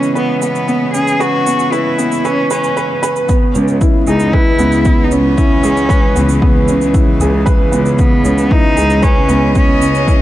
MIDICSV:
0, 0, Header, 1, 6, 480
1, 0, Start_track
1, 0, Key_signature, 4, "minor"
1, 0, Tempo, 521739
1, 1111, Time_signature, 4, 2, 24, 8
1, 9401, End_track
2, 0, Start_track
2, 0, Title_t, "Cello"
2, 0, Program_c, 0, 42
2, 0, Note_on_c, 0, 61, 93
2, 142, Note_off_c, 0, 61, 0
2, 147, Note_on_c, 0, 59, 100
2, 372, Note_off_c, 0, 59, 0
2, 393, Note_on_c, 0, 59, 99
2, 838, Note_off_c, 0, 59, 0
2, 864, Note_on_c, 0, 68, 107
2, 1108, Note_on_c, 0, 66, 114
2, 1122, Note_off_c, 0, 68, 0
2, 1587, Note_on_c, 0, 64, 99
2, 1601, Note_off_c, 0, 66, 0
2, 2072, Note_on_c, 0, 61, 112
2, 2085, Note_off_c, 0, 64, 0
2, 2308, Note_off_c, 0, 61, 0
2, 2314, Note_on_c, 0, 61, 93
2, 2759, Note_off_c, 0, 61, 0
2, 3754, Note_on_c, 0, 63, 96
2, 3989, Note_on_c, 0, 64, 114
2, 4003, Note_off_c, 0, 63, 0
2, 4639, Note_on_c, 0, 63, 68
2, 4652, Note_off_c, 0, 64, 0
2, 4710, Note_on_c, 0, 61, 103
2, 4724, Note_off_c, 0, 63, 0
2, 6151, Note_off_c, 0, 61, 0
2, 7348, Note_on_c, 0, 59, 95
2, 7830, Note_on_c, 0, 63, 118
2, 7844, Note_off_c, 0, 59, 0
2, 8309, Note_on_c, 0, 61, 111
2, 8323, Note_off_c, 0, 63, 0
2, 8786, Note_off_c, 0, 61, 0
2, 8792, Note_on_c, 0, 61, 105
2, 9401, Note_off_c, 0, 61, 0
2, 9401, End_track
3, 0, Start_track
3, 0, Title_t, "Felt piano"
3, 0, Program_c, 1, 0
3, 0, Control_c, 1, 64, 127
3, 0, Note_on_c, 1, 59, 73
3, 0, Note_on_c, 1, 61, 62
3, 0, Note_on_c, 1, 64, 72
3, 0, Note_on_c, 1, 68, 70
3, 0, Note_on_c, 1, 71, 86
3, 140, Note_off_c, 1, 71, 0
3, 140, Note_on_c, 1, 71, 90
3, 374, Note_off_c, 1, 71, 0
3, 385, Note_off_c, 1, 59, 0
3, 385, Note_on_c, 1, 59, 72
3, 525, Note_off_c, 1, 59, 0
3, 625, Note_on_c, 1, 59, 71
3, 856, Note_off_c, 1, 59, 0
3, 866, Note_off_c, 1, 61, 0
3, 866, Note_on_c, 1, 61, 73
3, 1005, Note_off_c, 1, 61, 0
3, 1104, Note_on_c, 1, 71, 97
3, 1336, Note_off_c, 1, 71, 0
3, 1346, Note_on_c, 1, 59, 75
3, 1485, Note_off_c, 1, 59, 0
3, 1585, Note_on_c, 1, 71, 102
3, 1816, Note_off_c, 1, 71, 0
3, 1825, Note_on_c, 1, 59, 75
3, 1965, Note_off_c, 1, 59, 0
3, 2069, Note_on_c, 1, 71, 102
3, 2291, Note_off_c, 1, 71, 0
3, 2307, Note_on_c, 1, 71, 108
3, 2530, Note_off_c, 1, 71, 0
3, 2546, Note_on_c, 1, 71, 110
3, 2769, Note_off_c, 1, 71, 0
3, 2785, Note_on_c, 1, 71, 110
3, 3009, Note_off_c, 1, 71, 0
3, 3022, Note_on_c, 1, 59, 80
3, 3045, Control_c, 1, 64, 0
3, 3050, Note_off_c, 1, 68, 0
3, 3052, Note_off_c, 1, 64, 0
3, 3214, Control_c, 1, 64, 127
3, 3255, Note_off_c, 1, 59, 0
3, 3268, Note_on_c, 1, 61, 75
3, 3406, Note_off_c, 1, 61, 0
3, 3507, Note_on_c, 1, 64, 82
3, 3646, Note_off_c, 1, 64, 0
3, 3746, Note_on_c, 1, 68, 74
3, 3885, Note_off_c, 1, 68, 0
3, 3988, Note_on_c, 1, 71, 96
3, 4218, Note_off_c, 1, 71, 0
3, 4221, Note_on_c, 1, 59, 80
3, 4363, Note_off_c, 1, 59, 0
3, 4464, Note_on_c, 1, 59, 82
3, 4695, Note_off_c, 1, 59, 0
3, 4702, Note_on_c, 1, 61, 76
3, 4843, Note_off_c, 1, 61, 0
3, 4945, Note_on_c, 1, 64, 88
3, 5085, Note_off_c, 1, 64, 0
3, 5179, Note_on_c, 1, 68, 79
3, 5322, Note_off_c, 1, 68, 0
3, 5418, Note_on_c, 1, 71, 110
3, 5652, Note_off_c, 1, 71, 0
3, 5661, Note_on_c, 1, 59, 74
3, 5803, Note_off_c, 1, 59, 0
3, 5906, Note_on_c, 1, 59, 81
3, 6136, Note_off_c, 1, 59, 0
3, 6149, Note_on_c, 1, 61, 78
3, 6287, Note_off_c, 1, 61, 0
3, 6389, Note_on_c, 1, 64, 75
3, 6527, Note_off_c, 1, 64, 0
3, 6629, Note_on_c, 1, 68, 80
3, 6767, Note_off_c, 1, 68, 0
3, 6861, Note_on_c, 1, 71, 101
3, 7094, Note_off_c, 1, 71, 0
3, 7103, Note_on_c, 1, 59, 77
3, 7244, Note_off_c, 1, 59, 0
3, 7349, Note_on_c, 1, 59, 77
3, 7578, Note_off_c, 1, 59, 0
3, 7588, Note_on_c, 1, 61, 75
3, 7726, Note_off_c, 1, 61, 0
3, 7826, Note_on_c, 1, 64, 85
3, 7965, Note_off_c, 1, 64, 0
3, 8060, Note_on_c, 1, 68, 80
3, 8202, Note_off_c, 1, 68, 0
3, 8303, Note_on_c, 1, 71, 106
3, 8535, Note_off_c, 1, 71, 0
3, 8545, Note_on_c, 1, 59, 78
3, 8685, Note_off_c, 1, 59, 0
3, 8786, Note_on_c, 1, 59, 80
3, 9016, Note_off_c, 1, 59, 0
3, 9030, Note_on_c, 1, 61, 79
3, 9167, Note_off_c, 1, 61, 0
3, 9275, Note_on_c, 1, 64, 77
3, 9401, Note_off_c, 1, 64, 0
3, 9401, End_track
4, 0, Start_track
4, 0, Title_t, "String quartet"
4, 0, Program_c, 2, 48
4, 0, Note_on_c, 2, 49, 70
4, 0, Note_on_c, 2, 52, 73
4, 0, Note_on_c, 2, 56, 65
4, 0, Note_on_c, 2, 61, 66
4, 3012, Note_off_c, 2, 49, 0
4, 3023, Note_on_c, 2, 49, 78
4, 3034, Note_off_c, 2, 56, 0
4, 3035, Note_off_c, 2, 52, 0
4, 3035, Note_off_c, 2, 61, 0
4, 3332, Note_on_c, 2, 56, 92
4, 3550, Note_on_c, 2, 59, 74
4, 4614, Note_on_c, 2, 52, 80
4, 7425, Note_on_c, 2, 61, 75
4, 7572, Note_off_c, 2, 59, 0
4, 8418, Note_on_c, 2, 75, 80
4, 8553, Note_off_c, 2, 52, 0
4, 9401, Note_off_c, 2, 49, 0
4, 9401, Note_off_c, 2, 56, 0
4, 9401, Note_off_c, 2, 61, 0
4, 9401, Note_off_c, 2, 75, 0
4, 9401, End_track
5, 0, Start_track
5, 0, Title_t, "Cello section"
5, 0, Program_c, 3, 48
5, 3266, Note_on_c, 3, 37, 97
5, 3435, Note_off_c, 3, 37, 0
5, 3744, Note_on_c, 3, 37, 105
5, 3913, Note_off_c, 3, 37, 0
5, 4222, Note_on_c, 3, 37, 99
5, 4393, Note_off_c, 3, 37, 0
5, 4704, Note_on_c, 3, 37, 90
5, 4873, Note_off_c, 3, 37, 0
5, 5177, Note_on_c, 3, 37, 96
5, 5350, Note_off_c, 3, 37, 0
5, 5664, Note_on_c, 3, 37, 100
5, 5833, Note_off_c, 3, 37, 0
5, 6144, Note_on_c, 3, 37, 89
5, 6313, Note_off_c, 3, 37, 0
5, 6624, Note_on_c, 3, 37, 97
5, 6793, Note_off_c, 3, 37, 0
5, 7104, Note_on_c, 3, 37, 102
5, 7273, Note_off_c, 3, 37, 0
5, 7588, Note_on_c, 3, 37, 99
5, 7755, Note_off_c, 3, 37, 0
5, 8067, Note_on_c, 3, 37, 95
5, 8235, Note_off_c, 3, 37, 0
5, 8547, Note_on_c, 3, 37, 99
5, 8715, Note_off_c, 3, 37, 0
5, 9029, Note_on_c, 3, 37, 92
5, 9196, Note_off_c, 3, 37, 0
5, 9401, End_track
6, 0, Start_track
6, 0, Title_t, "Drums"
6, 26, Note_on_c, 9, 82, 43
6, 118, Note_off_c, 9, 82, 0
6, 148, Note_on_c, 9, 82, 30
6, 240, Note_off_c, 9, 82, 0
6, 384, Note_on_c, 9, 82, 70
6, 476, Note_off_c, 9, 82, 0
6, 509, Note_on_c, 9, 82, 44
6, 601, Note_off_c, 9, 82, 0
6, 628, Note_on_c, 9, 82, 33
6, 720, Note_off_c, 9, 82, 0
6, 867, Note_on_c, 9, 82, 75
6, 959, Note_off_c, 9, 82, 0
6, 988, Note_on_c, 9, 82, 44
6, 1080, Note_off_c, 9, 82, 0
6, 1109, Note_on_c, 9, 82, 30
6, 1201, Note_off_c, 9, 82, 0
6, 1348, Note_on_c, 9, 82, 74
6, 1440, Note_off_c, 9, 82, 0
6, 1466, Note_on_c, 9, 82, 42
6, 1558, Note_off_c, 9, 82, 0
6, 1589, Note_on_c, 9, 82, 34
6, 1681, Note_off_c, 9, 82, 0
6, 1828, Note_on_c, 9, 82, 72
6, 1920, Note_off_c, 9, 82, 0
6, 1948, Note_on_c, 9, 82, 45
6, 2040, Note_off_c, 9, 82, 0
6, 2069, Note_on_c, 9, 82, 31
6, 2161, Note_off_c, 9, 82, 0
6, 2303, Note_on_c, 9, 82, 72
6, 2395, Note_off_c, 9, 82, 0
6, 2426, Note_on_c, 9, 82, 45
6, 2518, Note_off_c, 9, 82, 0
6, 2549, Note_on_c, 9, 82, 33
6, 2641, Note_off_c, 9, 82, 0
6, 2788, Note_on_c, 9, 82, 78
6, 2880, Note_off_c, 9, 82, 0
6, 2908, Note_on_c, 9, 82, 46
6, 3000, Note_off_c, 9, 82, 0
6, 3025, Note_on_c, 9, 82, 42
6, 3028, Note_on_c, 9, 36, 102
6, 3117, Note_off_c, 9, 82, 0
6, 3120, Note_off_c, 9, 36, 0
6, 3265, Note_on_c, 9, 82, 59
6, 3357, Note_off_c, 9, 82, 0
6, 3386, Note_on_c, 9, 82, 28
6, 3478, Note_off_c, 9, 82, 0
6, 3506, Note_on_c, 9, 82, 40
6, 3508, Note_on_c, 9, 36, 104
6, 3598, Note_off_c, 9, 82, 0
6, 3600, Note_off_c, 9, 36, 0
6, 3743, Note_on_c, 9, 82, 57
6, 3835, Note_off_c, 9, 82, 0
6, 3861, Note_on_c, 9, 82, 44
6, 3953, Note_off_c, 9, 82, 0
6, 3987, Note_on_c, 9, 36, 102
6, 4079, Note_off_c, 9, 36, 0
6, 4222, Note_on_c, 9, 82, 59
6, 4314, Note_off_c, 9, 82, 0
6, 4342, Note_on_c, 9, 82, 30
6, 4434, Note_off_c, 9, 82, 0
6, 4461, Note_on_c, 9, 82, 42
6, 4467, Note_on_c, 9, 36, 108
6, 4553, Note_off_c, 9, 82, 0
6, 4559, Note_off_c, 9, 36, 0
6, 4704, Note_on_c, 9, 82, 63
6, 4796, Note_off_c, 9, 82, 0
6, 4947, Note_on_c, 9, 36, 100
6, 4948, Note_on_c, 9, 82, 45
6, 5039, Note_off_c, 9, 36, 0
6, 5040, Note_off_c, 9, 82, 0
6, 5184, Note_on_c, 9, 82, 64
6, 5276, Note_off_c, 9, 82, 0
6, 5308, Note_on_c, 9, 82, 29
6, 5400, Note_off_c, 9, 82, 0
6, 5428, Note_on_c, 9, 36, 110
6, 5430, Note_on_c, 9, 82, 41
6, 5520, Note_off_c, 9, 36, 0
6, 5522, Note_off_c, 9, 82, 0
6, 5666, Note_on_c, 9, 82, 61
6, 5758, Note_off_c, 9, 82, 0
6, 5786, Note_on_c, 9, 82, 47
6, 5878, Note_off_c, 9, 82, 0
6, 5908, Note_on_c, 9, 36, 109
6, 6000, Note_off_c, 9, 36, 0
6, 6145, Note_on_c, 9, 82, 64
6, 6237, Note_off_c, 9, 82, 0
6, 6268, Note_on_c, 9, 82, 33
6, 6360, Note_off_c, 9, 82, 0
6, 6386, Note_on_c, 9, 82, 46
6, 6388, Note_on_c, 9, 36, 110
6, 6478, Note_off_c, 9, 82, 0
6, 6480, Note_off_c, 9, 36, 0
6, 6629, Note_on_c, 9, 82, 68
6, 6721, Note_off_c, 9, 82, 0
6, 6868, Note_on_c, 9, 82, 45
6, 6869, Note_on_c, 9, 36, 109
6, 6960, Note_off_c, 9, 82, 0
6, 6961, Note_off_c, 9, 36, 0
6, 7108, Note_on_c, 9, 82, 62
6, 7200, Note_off_c, 9, 82, 0
6, 7228, Note_on_c, 9, 82, 29
6, 7320, Note_off_c, 9, 82, 0
6, 7347, Note_on_c, 9, 82, 45
6, 7350, Note_on_c, 9, 36, 115
6, 7439, Note_off_c, 9, 82, 0
6, 7442, Note_off_c, 9, 36, 0
6, 7587, Note_on_c, 9, 82, 65
6, 7679, Note_off_c, 9, 82, 0
6, 7709, Note_on_c, 9, 82, 45
6, 7801, Note_off_c, 9, 82, 0
6, 7829, Note_on_c, 9, 36, 105
6, 7921, Note_off_c, 9, 36, 0
6, 8069, Note_on_c, 9, 82, 63
6, 8161, Note_off_c, 9, 82, 0
6, 8188, Note_on_c, 9, 82, 31
6, 8280, Note_off_c, 9, 82, 0
6, 8306, Note_on_c, 9, 82, 45
6, 8310, Note_on_c, 9, 36, 107
6, 8398, Note_off_c, 9, 82, 0
6, 8402, Note_off_c, 9, 36, 0
6, 8546, Note_on_c, 9, 82, 64
6, 8638, Note_off_c, 9, 82, 0
6, 8787, Note_on_c, 9, 82, 43
6, 8790, Note_on_c, 9, 36, 104
6, 8879, Note_off_c, 9, 82, 0
6, 8882, Note_off_c, 9, 36, 0
6, 9031, Note_on_c, 9, 82, 66
6, 9123, Note_off_c, 9, 82, 0
6, 9152, Note_on_c, 9, 82, 28
6, 9244, Note_off_c, 9, 82, 0
6, 9271, Note_on_c, 9, 36, 109
6, 9274, Note_on_c, 9, 82, 44
6, 9363, Note_off_c, 9, 36, 0
6, 9366, Note_off_c, 9, 82, 0
6, 9401, End_track
0, 0, End_of_file